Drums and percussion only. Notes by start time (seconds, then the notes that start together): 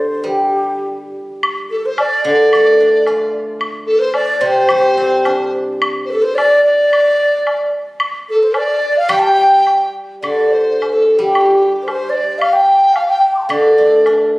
1.43 high woodblock
1.98 high woodblock, low woodblock
2.53 high woodblock
3.06 high woodblock, low woodblock
3.61 high woodblock
4.14 high woodblock, low woodblock
4.69 high woodblock
5.25 high woodblock, low woodblock
5.82 high woodblock
6.38 high woodblock, low woodblock
6.93 high woodblock
7.47 high woodblock, low woodblock
8.00 high woodblock
8.54 high woodblock, low woodblock
9.09 high woodblock
9.67 high woodblock
10.24 high woodblock
10.82 high woodblock, low woodblock
11.35 high woodblock
11.88 high woodblock, low woodblock
12.41 high woodblock
12.96 high woodblock, low woodblock
13.50 high woodblock
14.06 high woodblock, low woodblock